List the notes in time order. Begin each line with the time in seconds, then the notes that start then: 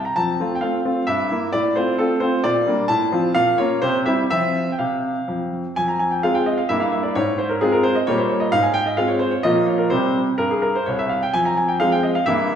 0.05 A#5
0.16 F2 A5
0.40 A3 C4 F4
0.55 G5
0.61 A3 C4 F4 F5
0.85 A3 C4 F4
1.07 G2 E5
1.31 A#3 E4
1.53 A2 D5
1.76 A3 C4 F4 C5
1.98 A3 C4 F4 A4
2.20 A3 C4 F4 C5
2.44 A#2 D5
2.67 G3 A#3 D4
2.88 A2 A5
3.12 F3 C4 F4
3.35 A#2 F5
3.58 A#3 C#4 F4 C#5
3.82 C3 C5
4.06 G3 C4 E4 E5
4.30 F3 C4 F4 E5
4.72 G5
4.79 C3 F5
5.28 F2
5.76 F2 G#5
5.88 A#5
5.99 G#5
6.11 G5
6.23 G#3 C4 F4 F5
6.34 G5
6.46 D#5
6.58 F5
6.69 G2 A#3 E4 E5
6.80 F5
6.92 E5
7.03 D5
7.15 G#2 C#5
7.38 C5
7.49 A#4
7.61 G#3 C4 F4 G#4
7.72 A#4
7.83 C5
7.95 D#5
8.07 A#2 G3 A#3 G4 C#5
8.18 C5
8.29 C#5
8.40 D#5
8.52 G#2 F5
8.63 G#5
8.74 G5
8.86 D#5
8.97 G#3 C4 F4 F5
9.08 C#5
9.19 C5
9.31 C#5
9.43 A#2 F3 A#3 F4 D#5
9.66 C#5
9.78 A#4
9.90 C3 G3 C4 C5
10.38 G2 A#4
10.51 G#4
10.62 A#4
10.75 C5
10.86 C2 C#5
10.99 E5
11.09 F5
11.23 G5
11.33 F2 G#5
11.45 A#5
11.57 G#5
11.68 G5
11.80 F3 G#3 C4 F5
11.92 G5
12.03 D#5
12.15 F5
12.26 G2 E3 A#3 E4 E5